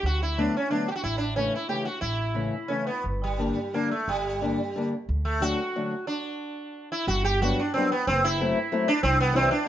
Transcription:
0.03 0.47 D2 medium
0.03 0.22 F#4 medium
0.23 0.39 E4 medium
0.38 0.55 D3 medium
0.38 0.55 F#3 soft
0.38 0.55 A3 soft
0.38 0.55 B3 soft
0.38 0.56 D4 medium
0.57 0.70 C#4 medium
0.70 0.87 D3 soft
0.70 0.88 F#3 soft
0.70 0.88 A3 soft
0.70 0.88 B3 soft
0.70 0.88 D4 medium
0.88 0.91 F#4 medium
0.88 0.95 G4 medium
0.96 1.03 F#4 medium
1.04 1.47 A1 medium
1.04 1.15 E4 medium
1.17 1.36 D4 medium
1.17 1.21 E4 soft
1.36 1.53 C#3 soft
1.36 1.54 E3 soft
1.36 1.54 A3 soft
1.36 1.54 C#4 medium
1.55 1.69 E4 medium
1.68 1.86 C#3 soft
1.68 1.86 E3 soft
1.68 1.87 A3 soft
1.68 1.87 C#4 medium
1.68 1.85 G4 medium
1.85 2.01 F#4 medium
2.01 2.47 A1 medium
2.01 2.72 E4 medium
2.34 2.53 C#3 medium
2.34 2.54 E3 soft
2.34 2.54 A3 soft
2.34 2.54 C#4 soft
2.68 2.88 C#3 soft
2.68 2.89 E3 soft
2.68 2.88 A3 soft
2.68 2.86 C#4 medium
2.68 2.89 C#4 soft
2.87 3.03 B3 medium
3.04 3.49 G1 medium
3.24 3.76 G3 medium
3.38 3.57 D3 soft
3.38 3.57 G3 soft
3.38 3.57 A#3 soft
3.38 3.57 D4 soft
3.73 3.91 D3 soft
3.73 3.92 G3 soft
3.73 3.91 A#3 soft
3.73 3.91 A#3 medium
3.73 3.92 D4 medium
3.91 4.08 A3 medium
4.08 4.52 G1 medium
4.08 4.89 G3 medium
4.41 4.59 D3 soft
4.41 4.59 G3 soft
4.41 4.60 A#3 soft
4.41 4.59 D4 medium
4.76 4.93 D3 soft
4.76 4.93 G3 soft
4.76 4.93 A#3 soft
4.76 4.94 D4 medium
5.09 5.52 D2 medium
5.25 5.42 A3 medium
5.40 5.58 D3 medium
5.40 5.59 F#3 medium
5.40 5.59 A3 soft
5.40 5.59 D4 medium
5.40 6.07 F#4 loud
5.76 5.93 D3 medium
5.76 5.93 F#3 soft
5.76 5.93 A3 medium
5.76 5.93 D4 soft
6.07 6.88 D4 medium
6.92 7.07 E4 medium
7.07 7.51 G1 medium
7.07 7.24 F#4 loud
7.25 7.42 G4 medium
7.42 7.59 F#3 medium
7.42 7.59 G3 soft
7.42 7.60 B3 medium
7.42 7.60 D4 medium
7.42 7.60 F#4 medium
7.59 7.73 D4 medium
7.74 7.92 F#3 medium
7.74 7.92 G3 medium
7.74 7.93 B3 soft
7.74 7.90 C4 medium
7.74 7.92 D4 medium
7.92 8.07 B3 medium
8.07 8.49 F#1 medium
8.07 8.25 C4 loud
8.24 8.85 E4 loud
8.40 8.57 F#3 medium
8.40 8.57 A3 medium
8.40 8.57 C4 medium
8.40 8.57 E4 medium
8.72 8.89 F#3 medium
8.72 8.88 A3 medium
8.72 8.89 C4 medium
8.72 8.89 E4 medium
8.88 9.03 D4 loud
9.03 9.45 C2 loud
9.03 9.20 C4 loud
9.20 9.35 B3 loud
9.33 9.51 E3 medium
9.33 9.51 G3 medium
9.33 9.52 C4 medium
9.33 9.50 C4 loud
9.33 9.52 E4 medium
9.51 9.68 D4 medium

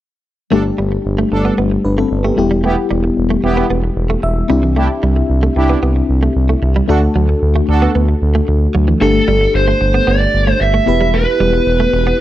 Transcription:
0.51 0.71 G1 medium
0.51 2.33 G3 medium
0.51 2.34 A3 medium
0.51 0.61 A3 medium
0.51 0.63 D4 medium
0.51 1.82 D4 medium
0.51 1.82 G4 medium
0.51 0.63 A4 loud
0.78 0.97 G1 medium
0.78 0.88 G3 medium
0.92 muted clean electric guitar stroke soft
1.05 1.24 G1 medium
1.18 1.27 A3 medium
1.31 1.51 G1 loud
1.31 1.54 D4 medium
1.31 1.54 A4 loud
1.31 muted clean electric guitar stroke soft
1.45 1.54 B3 medium
1.58 1.77 G1 medium
1.58 1.67 B3 medium
1.71 muted clean electric guitar stroke soft
1.85 2.04 G1 medium
1.85 1.97 D4 soft
1.85 1.97 B4 medium
1.98 2.07 A3 medium
1.98 2.23 C4 medium
1.98 2.23 A4 medium
2.11 2.30 G1 medium
2.24 2.34 A3 medium
2.24 2.36 B3 soft
2.24 2.37 G4 medium
2.36 2.76 E1 medium
2.36 4.45 G3 medium
2.36 4.46 B3 medium
2.36 4.46 E4 medium
2.36 4.46 G4 medium
2.36 muted clean electric guitar stroke soft
2.51 2.60 G3 medium
2.64 2.73 A3 medium
2.64 2.75 B3 medium
2.64 2.75 E4 medium
2.64 2.75 G4 loud
2.91 3.10 E1 loud
2.91 3.00 G3 medium
3.04 muted clean electric guitar stroke soft
3.17 3.36 E1 medium
3.30 3.40 A3 medium
3.44 3.63 E1 loud
3.44 3.66 B3 medium
3.44 3.66 E4 medium
3.44 3.66 G4 loud
3.44 muted clean electric guitar stroke soft
3.57 3.66 B3 medium
3.70 3.89 E1 loud
3.70 3.80 B3 medium
3.84 muted clean electric guitar stroke soft
3.97 4.16 E1 loud
4.10 4.19 A3 medium
4.23 4.43 E1 loud
4.23 4.73 E5 medium
4.23 muted clean electric guitar stroke soft
4.49 4.88 C2 medium
4.49 4.59 G3 medium
4.49 6.58 C4 medium
4.49 6.58 D4 medium
4.49 6.59 E4 medium
4.49 6.59 G4 medium
4.63 4.72 E3 medium
4.76 4.86 A3 medium
4.76 4.88 D4 medium
4.76 4.88 E4 medium
4.76 4.88 G4 loud
5.03 5.22 C2 medium
5.03 5.12 G3 medium
5.16 muted clean electric guitar stroke soft
5.30 5.49 C2 loud
5.43 5.52 A3 medium
5.56 5.75 C2 medium
5.56 5.79 D4 medium
5.56 5.79 E4 medium
5.56 5.79 G4 loud
5.56 muted clean electric guitar stroke soft
5.70 5.79 B3 medium
5.83 6.02 C2 medium
5.83 5.92 B3 medium
5.96 muted clean electric guitar stroke soft
6.09 6.28 C2 medium
6.23 6.32 A3 medium
6.36 6.55 C2 medium
6.49 6.58 A3 medium
6.62 6.81 C2 loud
6.62 muted clean electric guitar stroke soft
6.76 6.85 G3 medium
6.88 7.08 D2 loud
6.88 8.97 A3 medium
6.88 6.98 A3 medium
6.88 8.97 D4 medium
6.88 7.00 D4 medium
6.88 7.00 F#4 medium
6.88 8.98 F#4 medium
6.88 7.00 A4 medium
6.88 8.98 A4 medium
7.15 7.35 D2 loud
7.15 7.25 F#3 medium
7.29 muted clean electric guitar stroke soft
7.42 7.61 D2 loud
7.56 7.65 A3 medium
7.69 7.88 D2 loud
7.69 7.91 D4 medium
7.69 7.91 F#4 medium
7.69 7.91 A4 loud
7.69 muted clean electric guitar stroke soft
7.82 7.91 B3 medium
7.95 8.14 D2 loud
7.95 8.04 B3 medium
8.09 muted clean electric guitar stroke soft
8.22 8.41 D2 loud
8.35 8.44 A3 medium
8.48 8.67 D2 medium
8.48 muted clean electric guitar stroke soft
8.75 8.94 D2 medium
8.75 8.84 F#3 medium
8.88 8.97 E3 medium
9.00 9.20 G1 medium
9.00 10.83 A3 medium
9.00 9.11 A3 medium
9.00 10.83 D4 medium
9.00 10.84 G4 medium
9.00 9.55 A4 medium
9.00 10.84 A4 medium
9.28 9.47 G1 loud
9.28 9.37 G3 medium
9.41 muted clean electric guitar stroke soft
9.54 9.74 G1 loud
9.54 10.10 C5 medium
9.68 9.77 A3 medium
9.81 10.00 G1 medium
9.81 muted clean electric guitar stroke soft
9.94 10.03 B3 medium
10.07 10.27 G1 loud
10.07 10.16 B3 medium
10.07 10.61 D5 medium
10.21 muted clean electric guitar stroke soft
10.34 10.53 G1 medium
10.47 10.56 A3 medium
10.61 10.80 G1 medium
10.61 11.16 E5 loud
10.74 10.83 A3 medium
10.86 11.26 E1 loud
10.86 12.21 B3 medium
10.86 12.21 E4 medium
10.86 12.21 G4 medium
10.86 12.21 B4 medium
10.86 muted clean electric guitar stroke soft
11.01 11.10 G3 medium
11.14 11.23 A3 medium
11.14 12.21 B4 medium
11.40 11.59 E1 loud
11.40 11.49 G3 medium
11.53 muted clean electric guitar stroke soft
11.67 11.86 E1 medium
11.80 11.89 A3 medium
11.93 12.12 E1 medium
11.93 muted clean electric guitar stroke soft
12.07 12.16 B3 medium

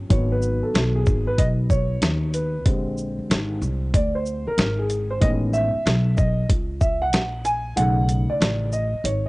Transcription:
0.09 0.61 G#1 loud
0.09 2.61 D#3 medium
0.09 2.62 F#3 medium
0.09 2.62 B3 medium
0.09 0.32 C#5 medium
0.09 kick loud
0.09 closed hi-hat medium
0.32 0.65 B4 medium
0.42 shaker soft
0.63 0.93 A4 medium
0.63 muted upright bass stroke soft
0.74 1.05 B1 medium
0.74 snare loud
0.74 closed hi-hat medium
0.95 1.28 G#4 medium
1.06 1.37 G#1 medium
1.06 kick medium
1.06 shaker soft
1.27 1.39 B4 medium
1.38 1.99 B1 medium
1.38 1.45 D#5 loud
1.38 kick medium
1.38 closed hi-hat medium
1.70 2.30 C#5 loud
1.70 kick medium
1.70 shaker soft
2.02 2.66 D#2 medium
2.02 snare loud
2.02 closed hi-hat medium
2.34 2.64 B4 medium
2.34 closed hi-hat medium
2.34 shaker soft
2.65 3.16 A#1 loud
2.65 5.17 D3 medium
2.65 5.17 G#3 medium
2.65 5.18 C4 medium
2.65 5.17 G4 medium
2.65 kick loud
2.65 closed hi-hat medium
2.98 shaker soft
3.19 muted upright bass stroke soft
3.30 3.60 G#1 medium
3.30 snare loud
3.30 closed hi-hat medium
3.62 3.92 C2 medium
3.62 shaker medium
3.94 4.44 D2 medium
3.94 4.14 D5 medium
3.94 kick loud
3.94 closed hi-hat medium
4.15 4.45 C5 medium
4.26 shaker medium
4.47 4.80 A#4 medium
4.47 muted upright bass stroke medium
4.58 5.18 G#1 medium
4.58 snare loud
4.58 closed hi-hat medium
4.79 5.12 G#4 medium
4.90 closed hi-hat soft
4.90 shaker soft
5.10 5.21 C5 medium
5.20 5.72 A1 loud
5.20 5.67 D#3 medium
5.20 5.67 G#3 medium
5.20 5.68 B3 medium
5.20 5.68 C#4 medium
5.20 5.29 D#5 loud
5.20 kick loud
5.20 closed hi-hat medium
5.53 6.19 E5 loud
5.53 shaker soft
5.74 muted upright bass stroke soft
5.86 6.46 B1 loud
5.86 snare loud
5.86 closed hi-hat medium
6.17 6.47 D#5 medium
6.17 kick medium
6.17 shaker soft
6.49 7.13 C#2 medium
6.49 kick loud
6.49 closed hi-hat medium
6.81 7.02 E5 medium
6.81 kick medium
6.81 shaker medium
7.02 7.46 F#5 loud
7.13 7.74 A#1 loud
7.13 snare loud
7.13 closed hi-hat medium
7.45 7.78 G#5 loud
7.45 closed hi-hat soft
7.45 shaker medium
7.76 8.27 B1 loud
7.76 8.69 C#3 medium
7.76 8.68 D#3 medium
7.76 8.68 A3 medium
7.76 8.31 F#5 loud
7.76 closed hi-hat medium
8.09 closed hi-hat soft
8.09 shaker soft
8.30 8.70 D5 medium
8.30 muted upright bass stroke soft
8.40 8.91 A1 loud
8.40 snare loud
8.40 closed hi-hat medium
8.72 9.05 D#5 medium
8.72 shaker soft
8.93 muted upright bass stroke soft
9.04 9.29 G#1 medium
9.04 9.26 C#5 medium
9.04 closed hi-hat medium

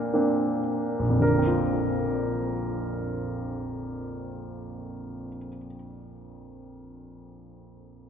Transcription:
0.00 1.18 A#2 medium
0.00 0.14 A#3 soft
0.00 0.14 C4 soft
0.00 0.15 D4 soft
0.00 0.60 A#4 medium
0.14 1.01 A#3 soft
0.14 1.01 C4 soft
0.14 1.01 D4 soft
0.99 5.27 A#1 soft
1.09 5.36 F2 soft
1.19 5.46 D3 soft
1.19 5.50 A#4 soft
1.28 5.56 A#3 soft
1.38 5.65 C4 soft
1.47 5.74 F4 soft

